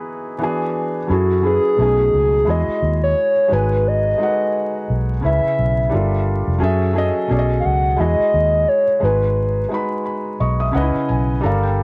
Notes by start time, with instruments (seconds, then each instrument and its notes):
Already playing: felt piano E3 B3 D#4 E4 F#4 G#4 B4, soft synth lead G#4
0.38 felt piano E3 B3 D4 F#4
0.43 felt piano G#4
1.07 fingered electric bass F#2, felt piano F#3 C#4 E4 G#4
1.11 soft synth lead F#4, felt piano A4
1.42 felt piano F#3 C#4 E4 G#4, soft synth lead G#4
1.47 felt piano B4
1.76 fingered electric bass B1, felt piano B2 F#3 A3 C#4
1.80 felt piano D#4 G#4
2.13 fingered electric bass C#2
2.45 fingered electric bass E2, felt piano G#3 E4 F#4 G#4
2.49 soft synth lead D#5, felt piano D#5
2.68 muted fingered electric bass stroke
2.82 fingered electric bass D#2
3.04 soft synth lead C#5
3.48 fingered electric bass G#1, felt piano G#3 D#4 F#4 B4
3.53 soft synth lead B4, felt piano G#5
3.87 soft synth lead D#5
4.18 felt piano G#3 D#4 F#4 A4
4.23 felt piano F#5
4.28 felt piano B4
4.90 fingered electric bass B1
5.21 fingered electric bass C#2, felt piano C#3 C#4 E4, soft synth lead E5
5.25 felt piano B4 E5
5.44 muted fingered electric bass stroke
5.59 fingered electric bass B1
5.90 fingered electric bass G1, felt piano G3 D4 A4 A#4
5.95 felt piano F4
6.48 fingered electric bass F1
6.58 fingered electric bass F#2, felt piano F#3 C#4 G#4
6.63 felt piano A4 E5
6.93 felt piano F#3 C#4 G#4 A4
6.98 felt piano D#5
7.27 fingered electric bass B1, felt piano B2 F#3 C#4 G#4
7.32 felt piano A4 D5
7.39 felt piano D#5
7.60 soft synth lead F5
7.65 fingered electric bass C#2, soft synth lead F#5
7.96 fingered electric bass E2, felt piano G#3 E4 F#4 G#4, soft synth lead D#5
8.01 felt piano D#5
8.19 muted fingered electric bass stroke
8.34 fingered electric bass D#2
8.68 soft synth lead C#5
9.00 fingered electric bass G#1, felt piano G#3 D#4 F#4 B4, soft synth lead B4
9.05 felt piano G#5
9.69 felt piano G#3 D#4 F#4 B4
9.74 felt piano B5
10.06 felt piano B5
10.40 fingered electric bass B1, felt piano D#5 C#6
10.60 felt piano E5 D#6
10.72 fingered electric bass C#2, felt piano C#3 C#4 D#4 B4 F#5
10.77 felt piano D#5
10.81 felt piano E4
10.95 muted fingered electric bass stroke
11.09 fingered electric bass B1, felt piano G#5
11.41 fingered electric bass G1, felt piano G3 D4 A4 A#4 A#5
11.46 felt piano F5
11.63 felt piano G5